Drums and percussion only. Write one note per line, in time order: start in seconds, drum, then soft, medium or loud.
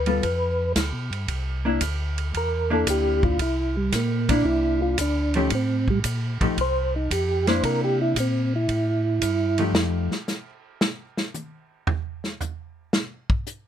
0.06 ride soft
0.23 kick soft
0.23 ride medium
0.76 kick soft
0.76 snare medium
0.76 hi-hat pedal medium
0.76 ride medium
1.13 ride soft
1.28 kick soft
1.28 ride medium
1.81 kick soft
1.81 hi-hat pedal medium
1.81 ride medium
2.18 ride soft
2.34 kick soft
2.34 ride medium
2.87 kick soft
2.87 hi-hat pedal medium
2.87 ride medium
3.23 kick medium
3.39 kick soft
3.39 ride medium
3.92 kick soft
3.92 snare soft
3.92 hi-hat pedal medium
3.92 ride medium
4.29 kick medium
4.29 ride medium
4.45 kick soft
4.98 kick soft
4.98 hi-hat pedal medium
4.98 ride medium
5.34 ride soft
5.50 kick soft
5.50 ride medium
5.88 kick soft
6.04 kick soft
6.04 hi-hat pedal medium
6.04 ride medium
6.41 kick medium
6.41 ride soft
6.58 kick soft
6.58 ride medium
7.11 kick soft
7.11 hi-hat pedal medium
7.11 ride medium
7.47 snare medium
7.47 ride soft
7.63 kick soft
7.63 ride medium
8.16 kick soft
8.16 hi-hat pedal medium
8.16 ride medium
8.69 kick soft
8.69 ride medium
9.22 kick soft
9.22 hi-hat pedal medium
9.22 ride medium
9.58 ride soft
9.75 snare loud
10.11 snare soft
10.28 snare soft
10.28 hi-hat pedal medium
10.81 snare medium
11.17 snare medium
11.34 hi-hat pedal medium
11.34 high tom soft
11.87 floor tom loud
12.24 snare soft
12.40 floor tom soft
12.40 hi-hat pedal medium
12.93 snare medium
13.30 kick medium
13.47 hi-hat pedal medium